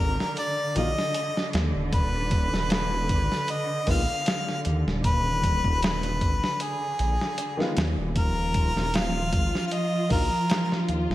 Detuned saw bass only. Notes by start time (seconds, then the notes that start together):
Already playing: G#1
0.76 A#1
1.54 D#2
1.75 D#1
2.53 D#1
3.10 G#1
3.88 A#1
4.66 D#2
4.87 D#1
5.65 D#1
6.22 G#1
7.00 A#1
7.77 D#2
7.98 D#1
8.76 D#1
9.33 G#1
10.11 A#1
10.89 D#2
11.10 D#1